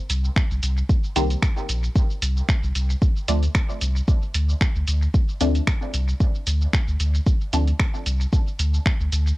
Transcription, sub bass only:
0.10 0.30 C2 medium
0.51 0.60 C2 medium
0.63 0.83 C2 loud
1.16 1.36 C2 loud
1.69 1.89 A#1 medium
2.22 2.42 C2 medium
2.63 2.72 C2 loud
2.75 2.95 C2 medium
3.28 3.48 D2 loud
3.81 4.01 C2 medium
4.35 4.54 D2 medium
4.76 4.84 D2 medium
4.88 5.08 D2 medium
5.41 5.61 D2 loud
5.94 6.14 C2 medium
6.47 6.67 D2 medium
6.88 6.97 D2 medium
7.00 7.20 D2 loud
7.53 7.73 D2 loud
8.06 8.26 C2 medium
8.59 8.79 D2 medium
9.00 9.09 D2 medium
9.12 9.32 D2 loud

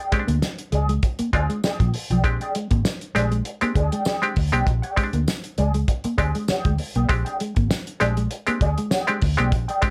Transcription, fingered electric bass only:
0.28 0.40 D2 medium
0.72 0.97 C#2 loud
1.20 muted fingered electric bass stroke soft
1.34 1.47 D2 loud
1.80 1.92 A#2 loud
2.10 2.24 B1 medium
2.24 2.38 A#1 loud
2.71 2.83 G#1 loud
3.16 3.40 A#1 medium
3.62 muted fingered electric bass stroke soft
3.76 3.89 D2 medium
4.37 4.50 D2 medium
4.53 4.64 B1 loud
4.67 4.80 A#1 loud
5.13 5.25 D2 medium
5.58 5.83 C#2 loud
6.04 muted fingered electric bass stroke medium
6.19 6.32 D2 loud
6.50 muted fingered electric bass stroke soft
6.65 6.77 D2 loud
6.96 7.07 B1 loud
7.09 7.23 A#1 loud
7.57 7.68 G#1 medium
8.02 8.26 A#1 medium
8.48 muted fingered electric bass stroke soft
8.61 8.74 D2 medium
9.22 9.36 D2 loud
9.38 9.52 B1 medium
9.52 9.65 A#1 loud

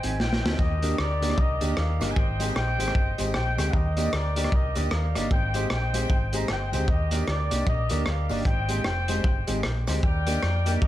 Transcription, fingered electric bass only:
0.05 0.18 G#1 medium
0.20 0.40 A#1 loud
0.44 0.57 D2 loud
0.59 0.93 D#2 loud
0.99 1.32 D2 medium
1.38 1.58 C2 medium
1.62 1.75 D2 medium
1.78 1.98 D#2 loud
2.01 2.14 G1 loud
2.17 2.50 G#1 loud
2.56 2.76 A#1 medium
2.80 2.93 G#1 loud
2.95 3.15 G1 medium
3.20 3.32 G#1 loud
3.35 3.55 A#1 loud
3.59 3.71 D2 medium
3.74 4.07 D#2 loud
4.13 4.46 D2 medium
4.53 4.73 C2 loud
4.77 4.90 D2 loud
4.92 5.12 D#2 medium
5.16 5.29 G1 medium
5.31 5.65 G#1 loud
5.71 6.04 A#1 medium
6.10 6.43 G#1 loud
6.50 6.75 G1 medium
6.73 6.86 D2 medium
6.88 7.22 D#2 loud
7.28 7.48 D2 medium
7.52 7.65 C2 medium
7.67 7.87 A#1 medium
7.91 8.04 D2 medium
8.07 8.27 D2 loud
8.31 8.44 G1 medium
8.46 8.79 G#1 loud
8.85 9.19 F1 medium
9.24 9.45 G1 medium
9.49 9.62 G#1 medium
9.65 9.84 A#1 medium
9.88 10.01 D2 medium
10.04 10.37 D#2 loud
10.43 10.76 F2 loud
10.82 10.88 D#2 medium

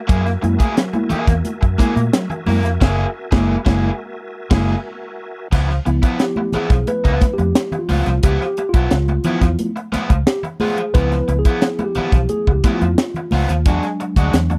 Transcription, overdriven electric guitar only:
0.07 0.28 A#3 medium
0.07 0.25 E4 medium
0.07 0.24 G#4 medium
0.25 muted overdriven electric guitar stroke soft
0.42 muted overdriven electric guitar stroke soft
0.59 0.76 A#3 medium
0.59 0.75 E4 medium
0.59 0.75 G#4 medium
0.93 muted overdriven electric guitar stroke soft
1.10 1.30 A#3 medium
1.10 1.28 E4 medium
1.10 1.27 G#4 loud
1.28 muted overdriven electric guitar stroke soft
1.61 muted overdriven electric guitar stroke soft
1.78 1.99 A#3 loud
1.78 1.95 E4 medium
1.78 1.95 G#4 loud
1.96 muted overdriven electric guitar stroke soft
2.30 muted overdriven electric guitar stroke soft
2.47 2.67 A#3 medium
2.47 2.64 E4 medium
2.47 2.64 A#4 medium
2.64 muted overdriven electric guitar stroke soft
2.81 3.04 A#3 loud
2.81 3.04 E4 medium
2.81 3.05 G#4 loud
3.31 3.55 A#3 loud
3.31 3.55 E4 loud
3.31 3.55 G#4 medium
3.65 3.88 A#3 loud
3.65 3.89 E4 loud
3.65 3.90 G#4 loud
4.50 4.74 A#3 loud
4.50 4.74 E4 loud
4.50 4.74 G#4 loud
5.52 5.72 F3 medium
5.52 5.69 B3 medium
5.52 5.68 E4 medium
5.69 muted overdriven electric guitar stroke soft
5.86 muted overdriven electric guitar stroke soft
6.02 6.19 F3 medium
6.02 6.19 B3 medium
6.02 6.18 E4 medium
6.37 muted overdriven electric guitar stroke medium
6.54 6.74 F3 medium
6.54 6.71 B3 medium
6.54 6.70 E4 loud
6.71 muted overdriven electric guitar stroke soft
6.88 muted overdriven electric guitar stroke soft
7.04 7.21 F3 medium
7.04 7.21 B3 medium
7.04 7.22 E4 medium
7.22 muted overdriven electric guitar stroke medium
7.38 muted overdriven electric guitar stroke soft
7.72 muted overdriven electric guitar stroke soft
7.89 8.09 F3 loud
7.89 8.07 B3 loud
7.89 8.07 F4 loud
8.07 muted overdriven electric guitar stroke soft
8.24 8.44 F3 medium
8.24 8.41 B3 medium
8.24 8.40 E4 medium
8.41 muted overdriven electric guitar stroke soft
8.58 muted overdriven electric guitar stroke soft
8.74 8.90 F3 medium
8.74 8.90 B3 medium
8.74 8.90 E4 medium
9.09 muted overdriven electric guitar stroke soft
9.25 9.45 F3 medium
9.25 9.42 B3 medium
9.25 9.41 E4 loud
9.42 muted overdriven electric guitar stroke soft
9.76 muted overdriven electric guitar stroke soft
9.92 10.12 F3 medium
9.92 10.10 B3 medium
9.92 10.09 E4 loud
10.10 muted overdriven electric guitar stroke soft
10.44 muted overdriven electric guitar stroke soft
10.61 10.80 F3 medium
10.61 10.78 B3 loud
10.61 10.77 F4 medium
10.78 muted overdriven electric guitar stroke soft
10.95 11.14 F3 medium
10.95 11.11 B3 medium
10.95 11.11 E4 medium
11.12 muted overdriven electric guitar stroke medium
11.28 muted overdriven electric guitar stroke soft
11.46 11.62 F3 medium
11.46 11.61 B3 medium
11.46 11.61 E4 medium
11.79 muted overdriven electric guitar stroke soft
11.96 12.16 F3 medium
11.96 12.13 B3 medium
11.96 12.12 E4 medium
12.14 muted overdriven electric guitar stroke soft
12.48 muted overdriven electric guitar stroke medium
12.64 12.84 F3 medium
12.64 12.82 B3 medium
12.64 12.81 E4 loud
12.82 muted overdriven electric guitar stroke soft
13.17 muted overdriven electric guitar stroke soft
13.32 13.52 F3 medium
13.32 13.49 B3 loud
13.32 13.49 F4 loud
13.49 muted overdriven electric guitar stroke soft
13.66 13.86 G#3 medium
13.66 13.84 D4 medium
13.66 13.83 F#4 loud
13.84 muted overdriven electric guitar stroke soft
14.00 muted overdriven electric guitar stroke soft
14.17 14.33 G#3 medium
14.17 14.32 D4 medium
14.17 14.32 F#4 medium
14.50 muted overdriven electric guitar stroke soft

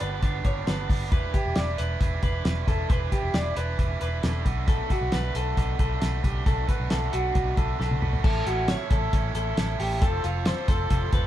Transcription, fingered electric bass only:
0.01 0.19 G1 medium
0.23 0.41 G1 medium
0.45 0.63 G1 medium
0.68 0.86 G1 medium
0.90 1.12 G1 medium
1.12 1.30 E1 medium
1.45 1.54 E1 medium
1.57 1.75 E1 medium
1.79 1.97 E1 medium
2.01 2.19 E1 medium
2.23 2.41 E1 medium
2.45 2.63 E1 loud
2.68 2.86 E1 medium
2.90 3.08 E1 medium
3.23 3.32 E1 medium
3.33 3.52 E1 medium
3.56 3.75 E1 medium
3.79 3.97 E1 medium
4.01 4.19 E1 medium
4.24 4.42 E1 loud
4.46 4.82 B1 medium
5.01 5.10 B1 loud
5.13 5.31 B1 medium
5.35 5.53 B1 medium
5.57 5.76 B1 medium
5.80 5.98 B1 medium
6.02 6.20 B1 medium
6.24 6.42 B1 medium
6.47 6.65 B1 medium
6.80 6.89 B1 medium
6.91 7.09 B1 medium
7.13 7.32 B1 medium
7.35 7.54 B1 medium
7.58 7.76 B1 medium
7.80 7.98 B1 medium
8.02 8.20 B1 medium
8.24 8.43 A1 loud
8.47 8.74 A1 medium
8.91 9.09 A1 medium
9.13 9.31 A1 medium
9.35 9.53 A1 medium
9.57 9.76 A1 loud
9.80 10.03 A1 medium
10.02 10.20 F1 medium
10.24 10.51 F1 medium
10.68 10.87 F1 loud
10.91 11.09 F1 loud
11.13 11.27 F1 loud

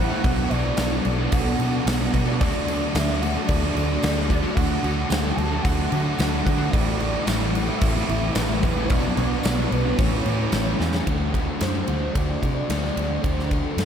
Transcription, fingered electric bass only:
0.00 0.11 A1 medium
0.25 0.45 B1 loud
0.51 0.71 B1 medium
0.77 0.98 B1 loud
1.05 1.26 B1 medium
1.33 1.53 B1 loud
1.59 1.80 B2 medium
1.86 2.07 B1 medium
2.14 2.41 B2 loud
2.41 2.82 D2 medium
2.95 3.36 D2 medium
3.49 3.69 D2 medium
3.75 3.96 D2 medium
4.03 4.44 D2 loud
4.57 4.78 D2 medium
4.83 5.04 D2 medium
5.10 5.31 D2 loud
5.37 5.58 D2 medium
5.65 5.85 D2 loud
5.92 6.12 D3 medium
6.19 6.40 D2 loud
6.47 6.67 D3 loud
6.74 7.14 A1 medium
7.27 7.68 A1 loud
7.82 8.02 A1 loud
8.09 8.29 A1 medium
8.35 8.91 A1 medium
8.91 9.11 B1 medium
9.17 9.37 B1 medium
9.44 9.65 B1 medium
9.72 9.92 B1 loud
9.99 10.19 A1 medium
10.26 10.46 A2 medium
10.52 10.73 A1 medium
10.80 11.00 E2 medium
11.07 11.46 D2 medium
11.61 11.81 F#2 medium
11.88 12.08 D2 medium
12.16 12.35 D2 medium
12.43 12.63 C3 medium
12.69 12.89 D2 medium
12.96 13.16 D2 medium
13.24 13.64 D2 medium
13.77 13.85 F#2 medium

